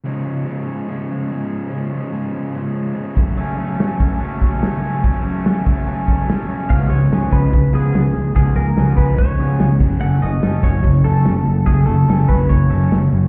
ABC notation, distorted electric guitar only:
X:1
M:4/4
L:1/8
Q:1/4=145
K:Dbmix
V:1 name="Distorted electric guitar" clef=bass
[D,F,A,D] [F,A,D] [D,F,A,D] [F,A,D] [D,F,A,D] [F,A,D] [D,F,A,D]2 | [D,F,A,D] [F,A,D] [D,F,A,D] [F,A,D] [D,F,A,D] [F,A,D] [D,F,A,D] [G,,D,G,=A,D] | [G,,D,G,=A,D] [G,A,D] [D,G,A,D] [G,A,D] [G,,D,G,A,D] [G,A,D] [D,G,A,D]2 | [G,,D,G,=A,D] [G,A,D] [D,G,A,D] [G,A,D] [G,,D,G,A,D] [G,A,D] [D,G,A,D]2 |
[D,F,A,] [D,F,] [D,F,] [D,F,A,] [D,F,] [D,F,] [D,F,] [D,F,] | [D,F,] [D,F,] [D,F,] [D,F,A,] [D,F,] [D,F,] [D,F,] [G,,D,G,] | [G,,D,] [G,,D,] [G,,D,] [G,,D,G,] [G,,D,] [G,,D,] [G,,D,] [G,,D,] | [G,,D,] [G,,D,] [G,,D,] [G,,D,G,] [G,,D,] [G,,D,] [G,,D,] [G,,D,] |]